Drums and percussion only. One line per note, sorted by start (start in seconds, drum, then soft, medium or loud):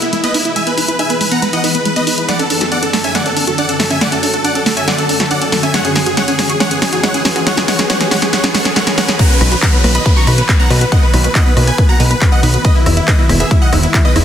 0.02 closed hi-hat medium
0.13 closed hi-hat medium
0.24 closed hi-hat medium
0.34 open hi-hat medium
0.45 closed hi-hat medium
0.56 closed hi-hat medium
0.67 closed hi-hat medium
0.78 open hi-hat loud
0.88 closed hi-hat medium
0.99 closed hi-hat medium
1.10 closed hi-hat medium
1.21 open hi-hat medium
1.32 closed hi-hat medium
1.42 closed hi-hat medium
1.53 closed hi-hat medium
1.64 open hi-hat loud
1.75 closed hi-hat medium
1.85 closed hi-hat medium
1.96 closed hi-hat medium
2.07 open hi-hat medium
2.18 closed hi-hat medium
2.29 snare soft
2.29 closed hi-hat medium
2.39 closed hi-hat medium
2.50 open hi-hat loud
2.61 snare soft
2.61 closed hi-hat medium
2.72 closed hi-hat medium
2.83 closed hi-hat medium
2.93 snare soft
2.93 open hi-hat medium
3.04 closed hi-hat medium
3.15 snare soft
3.15 closed hi-hat medium
3.26 closed hi-hat medium
3.37 open hi-hat loud
3.47 closed hi-hat medium
3.58 closed hi-hat medium
3.69 closed hi-hat medium
3.80 snare medium
3.80 open hi-hat medium
3.90 closed hi-hat medium
4.01 snare medium
4.01 closed hi-hat medium
4.12 closed hi-hat medium
4.23 open hi-hat loud
4.34 closed hi-hat medium
4.45 closed hi-hat medium
4.55 closed hi-hat medium
4.66 snare medium
4.66 open hi-hat medium
4.77 closed hi-hat medium
4.88 snare medium
4.88 closed hi-hat medium
4.98 closed hi-hat medium
5.09 open hi-hat loud
5.20 snare medium
5.20 closed hi-hat medium
5.31 closed hi-hat medium
5.42 closed hi-hat medium
5.52 snare medium
5.52 open hi-hat medium
5.63 closed hi-hat medium
5.74 snare medium
5.74 closed hi-hat medium
5.85 closed hi-hat medium
5.96 snare medium
5.96 open hi-hat loud
6.06 closed hi-hat medium
6.17 snare medium
6.17 closed hi-hat medium
6.28 closed hi-hat medium
6.39 snare medium
6.39 open hi-hat medium
6.50 closed hi-hat medium
6.60 snare medium
6.60 closed hi-hat medium
6.71 closed hi-hat medium
6.82 snare medium
6.82 open hi-hat loud
6.93 closed hi-hat medium
7.03 snare medium
7.03 closed hi-hat medium
7.14 closed hi-hat medium
7.25 snare medium
7.25 open hi-hat medium
7.36 closed hi-hat medium
7.47 snare medium
7.47 closed hi-hat medium
7.57 snare medium
7.57 closed hi-hat medium
7.68 snare medium
7.68 open hi-hat loud
7.79 snare medium
7.79 closed hi-hat medium
7.90 snare medium
7.90 closed hi-hat medium
8.01 snare medium
8.01 closed hi-hat medium
8.11 snare loud
8.11 open hi-hat medium
8.22 snare medium
8.22 closed hi-hat medium
8.33 snare loud
8.33 closed hi-hat medium
8.44 snare medium
8.44 closed hi-hat medium
8.54 snare loud
8.54 open hi-hat loud
8.65 snare medium
8.65 closed hi-hat medium
8.76 snare loud
8.76 closed hi-hat medium
8.87 snare medium
8.87 closed hi-hat medium
8.98 snare loud
8.98 open hi-hat medium
9.09 snare medium
9.09 closed hi-hat medium
9.19 kick loud
9.19 closed hi-hat medium
9.19 crash loud
9.41 cross-stick medium
9.41 open hi-hat loud
9.52 closed hi-hat medium
9.62 kick loud
9.62 clap loud
9.62 closed hi-hat medium
9.84 cross-stick medium
9.84 open hi-hat medium
9.95 closed hi-hat medium
10.06 kick loud
10.06 closed hi-hat medium
10.27 cross-stick medium
10.27 open hi-hat loud
10.38 closed hi-hat medium
10.49 kick loud
10.49 clap loud
10.49 closed hi-hat medium
10.70 cross-stick medium
10.70 open hi-hat loud
10.81 closed hi-hat medium
10.92 kick loud
10.92 closed hi-hat medium
11.14 cross-stick medium
11.14 open hi-hat loud
11.24 closed hi-hat medium
11.35 kick loud
11.35 clap loud
11.35 closed hi-hat medium
11.57 cross-stick medium
11.57 open hi-hat medium
11.68 closed hi-hat medium
11.78 kick loud
11.78 closed hi-hat medium
12.00 open hi-hat loud
12.11 closed hi-hat medium
12.21 kick loud
12.21 clap loud
12.21 closed hi-hat medium
12.43 open hi-hat loud
12.54 closed hi-hat medium
12.65 kick loud
12.65 closed hi-hat medium
12.86 cross-stick medium
12.86 open hi-hat loud
12.97 closed hi-hat medium
13.08 kick loud
13.08 clap loud
13.08 closed hi-hat medium
13.29 cross-stick medium
13.29 open hi-hat medium
13.40 closed hi-hat medium
13.51 kick loud
13.51 closed hi-hat medium
13.73 cross-stick medium
13.73 open hi-hat loud
13.83 closed hi-hat medium
13.94 kick loud
13.94 clap loud
13.94 closed hi-hat medium
14.16 cross-stick medium
14.16 open hi-hat loud